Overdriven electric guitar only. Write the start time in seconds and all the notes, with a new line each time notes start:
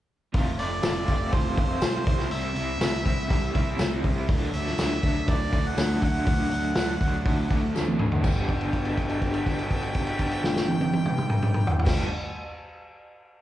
0.33 F2 C3 F3 A3 C4 F4
0.58 F2 C3 F3 A3 C4 F4
0.82 F2 C3 F3 A3 C4 F4
1.08 F2 C3 F3 A3 C4 F4
1.31 F2 C3 F3 A3 C4 F4
1.57 F2 C3 F3 A3 C4 F4
1.81 F2 C3 F3 A3 C4 F4
2.07 C3 G3 C4 E4
2.31 C3 G3 C4 E4
2.56 C3 G3 C4 E4
2.81 C3 G3 C4 E4
3.06 C3 G3 C4 E4
3.30 C3 G3 C4 E4
3.55 C3 G3 C4 E4
3.79 C3 G3 C4 E4
4.04 C3 G3 C4 E4
4.29 D3 F#3 A3 D4
4.53 D3 F#3 A3 D4
4.78 D3 F#3 A3 D4
5.02 D3 F#3 A3 D4
5.27 D3 F#3 A3 D4
5.52 D3 F#3 A3 D4
5.77 D3 F#3 A3 D4
6.02 D3 F#3 A3 D4
6.26 D3 F#3 A3 D4
6.50 D3 F#3 A3 D4
6.75 D3 F#3 A3 D4
7.00 D3 F#3 A3 D4
7.25 D3 F#3 A3 D4
7.49 D3 F#3 A3 D4
7.74 D3 F#3 A3 D4
7.99 D3 F#3 A3 D4
8.22 G2 D3 G3 B3 D4
11.85 G2 D3 G3 B3 D4